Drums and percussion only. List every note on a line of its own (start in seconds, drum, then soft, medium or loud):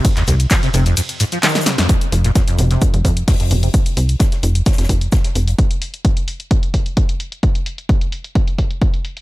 0.05 kick loud
0.05 closed hi-hat loud
0.05 ride medium
0.05 shaker soft
0.05 shaker medium
0.17 clap soft
0.17 closed hi-hat medium
0.17 shaker soft
0.27 open hi-hat loud
0.27 shaker medium
0.40 closed hi-hat medium
0.40 shaker soft
0.50 kick loud
0.50 snare loud
0.50 clap loud
0.50 closed hi-hat medium
0.50 ride medium
0.50 shaker medium
0.50 shaker soft
0.63 snare medium
0.63 open hi-hat medium
0.63 shaker soft
0.74 open hi-hat loud
0.74 shaker medium
0.86 closed hi-hat medium
0.86 shaker soft
0.97 closed hi-hat loud
0.97 ride medium
0.97 shaker medium
0.97 shaker soft
1.09 closed hi-hat medium
1.09 shaker soft
1.20 open hi-hat loud
1.20 shaker medium
1.32 closed hi-hat medium
1.32 shaker soft
1.43 snare medium
1.43 clap loud
1.43 closed hi-hat loud
1.43 ride medium
1.43 shaker medium
1.43 shaker soft
1.49 snare medium
1.49 shaker medium
1.55 snare medium
1.55 closed hi-hat medium
1.55 shaker medium
1.55 shaker soft
1.61 snare medium
1.61 shaker medium
1.66 snare loud
1.66 snare medium
1.66 open hi-hat loud
1.66 shaker medium
1.78 snare medium
1.78 closed hi-hat medium
1.78 closed hi-hat soft
1.78 shaker soft
1.89 kick loud
1.89 closed hi-hat medium
1.89 shaker medium
2.01 closed hi-hat medium
2.12 open hi-hat loud
2.12 shaker medium
2.24 snare soft
2.24 closed hi-hat medium
2.35 kick loud
2.35 snare loud
2.35 closed hi-hat loud
2.35 shaker medium
2.48 snare medium
2.48 closed hi-hat medium
2.58 open hi-hat loud
2.58 shaker medium
2.70 snare medium
2.70 closed hi-hat medium
2.82 kick loud
2.82 closed hi-hat loud
2.82 shaker medium
2.94 closed hi-hat medium
3.05 kick medium
3.05 open hi-hat loud
3.05 shaker medium
3.17 closed hi-hat medium
3.28 kick loud
3.28 snare loud
3.28 closed hi-hat medium
3.28 open hi-hat medium
3.40 snare soft
3.40 closed hi-hat medium
3.50 open hi-hat loud
3.50 shaker medium
3.63 closed hi-hat medium
3.74 kick loud
3.74 closed hi-hat loud
3.74 shaker medium
3.86 closed hi-hat medium
3.97 open hi-hat loud
3.97 shaker medium
4.09 closed hi-hat medium
4.20 kick loud
4.20 snare loud
4.20 closed hi-hat medium
4.20 shaker medium
4.32 snare medium
4.32 closed hi-hat medium
4.43 open hi-hat loud
4.43 shaker medium
4.55 closed hi-hat medium
4.66 kick loud
4.66 snare medium
4.66 closed hi-hat loud
4.66 shaker medium
4.72 snare medium
4.72 shaker medium
4.78 snare medium
4.78 closed hi-hat medium
4.78 shaker medium
4.83 snare medium
4.83 shaker medium
4.89 kick medium
4.89 open hi-hat loud
4.89 shaker medium
5.01 closed hi-hat medium
5.12 kick loud
5.12 snare loud
5.12 closed hi-hat loud
5.12 shaker medium
5.24 snare medium
5.24 closed hi-hat medium
5.35 open hi-hat loud
5.35 shaker medium
5.48 closed hi-hat medium
5.48 closed hi-hat soft
5.59 kick loud
5.59 closed hi-hat medium
5.71 closed hi-hat medium
5.82 open hi-hat loud
5.94 closed hi-hat medium
6.05 kick loud
6.05 closed hi-hat medium
6.17 closed hi-hat medium
6.28 open hi-hat loud
6.40 closed hi-hat medium
6.51 kick loud
6.51 closed hi-hat medium
6.63 closed hi-hat medium
6.74 kick medium
6.74 open hi-hat loud
6.86 closed hi-hat medium
6.97 kick loud
6.97 closed hi-hat medium
7.09 closed hi-hat medium
7.20 open hi-hat loud
7.32 closed hi-hat medium
7.43 kick loud
7.43 closed hi-hat medium
7.55 closed hi-hat medium
7.66 open hi-hat loud
7.78 closed hi-hat medium
7.89 kick loud
7.89 closed hi-hat medium
8.01 closed hi-hat medium
8.12 open hi-hat loud
8.24 closed hi-hat medium
8.35 kick loud
8.35 closed hi-hat medium
8.47 closed hi-hat soft
8.58 kick medium
8.58 open hi-hat loud
8.71 closed hi-hat soft
8.82 kick loud
8.82 closed hi-hat medium
8.94 closed hi-hat medium
9.05 open hi-hat loud
9.17 closed hi-hat soft